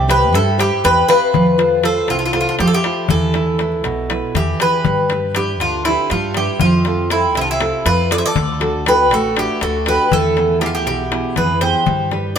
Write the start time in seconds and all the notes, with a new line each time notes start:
Already playing: C2
0.08 G4 B4 C5 E5, darbuka tek
0.32 G2 G3 E4 A4, darbuka tek
0.47 darbuka tek
0.58 E4 G4 C5 E5, darbuka tek
0.84 E2 C4 G4 B4, darbuka tek
1.08 F4 G4 B4 C5 E5, darbuka tek
1.34 F2 F3, darbuka dum
1.46 darbuka tek
1.58 F4 A4 C5, darbuka tek
1.83 F4 A4 C5, darbuka tek
2.08 C2 C3 C4 F4, darbuka tek
2.18 D4 F4, darbuka tek
2.26 D4 F4
2.33 D4 F4 A4 C5, darbuka tek
2.41 D4 F4
2.48 D4 F4
2.59 F2 F3 C4 G4, darbuka tek
2.65 F4 A4
2.74 E4 G4
2.84 F4 A4 C5, darbuka tek
3.08 E2 E3 E4 A4, darbuka dum
3.22 darbuka tek
3.34 E4 B4, darbuka tek
3.46 darbuka tek
3.59 E4 B4, darbuka tek
3.72 darbuka tek
3.84 B1 B2, darbuka tek
4.10 E4 B4, darbuka tek
4.35 E2 E3 E4 G4, darbuka tek, darbuka dum
4.60 E4 G4 G#4 B4, darbuka tek
4.73 darbuka tek
4.85 G2 G3, darbuka dum
4.97 darbuka tek
5.10 D4 G4 B4, darbuka tek
5.35 D4 E4 G4 B4, darbuka tek
5.60 D2 D3 D4 F4, darbuka tek
5.85 C4 D4 E4 G4 B4, darbuka tek
6.10 G2 G3 D4 F4, darbuka tek
6.34 D4 E4 G4 B4, darbuka tek
6.47 darbuka tek
6.59 F2 F3 C4 F4, darbuka dum
6.73 darbuka tek
6.85 C4 F4 A4, darbuka tek
7.10 C4 E4 F4 A4, darbuka tek
7.35 C2 C3 C4 E4, darbuka tek
7.41 D4 F4
7.51 C4 E4
7.61 C4 F4 A4, darbuka tek
7.85 F2 F3 F4 B4, darbuka tek
8.10 C4 F4 A4 B4 D5, darbuka tek
8.18 C5 E5
8.24 A4 D5, darbuka tek
8.35 D2 D3, darbuka dum
8.49 darbuka tek
8.60 D4 F#4 A4, darbuka tek
8.86 D4 F#4 G4 A4 B4, darbuka tek
9.11 A1 A3 F#4 A4, darbuka tek
9.36 D4 E4 F#4 G4 A4, darbuka tek
9.61 D2 D3 F#4 A4, darbuka tek
9.86 D4 F#4 G4 A4 B4, darbuka tek
9.99 darbuka tek
10.11 E2 E3 E4 A4, darbuka dum
10.25 darbuka tek
10.37 B3 E4 G#4, darbuka tek
10.61 B3 E4 G4 G#4, darbuka tek
10.66 D4 F4
10.75 E4 G4, darbuka tek
10.86 B1 B2 E4 G4, darbuka tek
10.99 darbuka tek
11.12 B3 E4 G#4, darbuka tek
11.25 darbuka tek
11.36 F2 E3 G#4 B4, darbuka tek, darbuka dum
11.61 B3 E4 G4 G#4 C5, darbuka tek
11.86 G2 G3, darbuka dum
11.99 darbuka tek
12.11 D4 G4 B4, darbuka tek